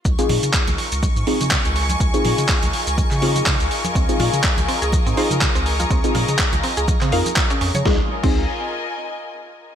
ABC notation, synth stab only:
X:1
M:4/4
L:1/16
Q:"Swing 16ths" 1/4=123
K:Db
V:1 name="Synth stab"
z [CEFA]8- [CEFA] [CEFA]6- | [CEFA] [CEFA]8- [CEFA] [CEFA]6- | [CEFA] [CEFA]8- [CEFA] [CEFA]6- | [CEFA] [CEFA]8- [CEFA] [CEFB] z4 z |
[CEFA] z2 [CEFA]2 z8 z3 |]